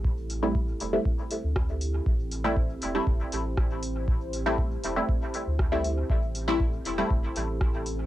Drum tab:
HH |-o-o-o-o|-o-o-o-o|-o-o-o-o|-o-o-o-o|
SD |------r-|------r-|------r-|------r-|
BD |o-o-o-o-|o-o-o-o-|o-o-o-o-|o-o-o-o-|